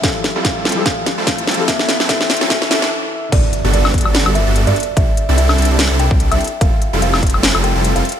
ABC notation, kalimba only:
X:1
M:4/4
L:1/16
Q:"Swing 16ths" 1/4=146
K:G
V:1 name="Kalimba"
=f3 z f2 z2 f3 z f2 z2 | e3 z e3 z e2 e2 z4 | d3 z d2 z4 e2 z d2 z | e3 z e2 z4 g2 z e2 z |
=f3 z f2 z4 g2 z f2 z |]